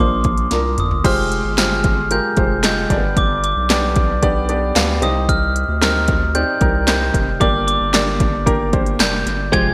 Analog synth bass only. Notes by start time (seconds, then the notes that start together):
0.00 A#1
0.52 C2
0.78 G1
1.05 F1
1.44 G1
2.37 F1
2.90 G1
3.17 G1
3.57 B1
4.76 D2
5.02 C2
5.69 D2
6.61 C2
7.14 F1
7.41 G1
7.81 G1
9.00 F1
9.26 G1
9.53 F1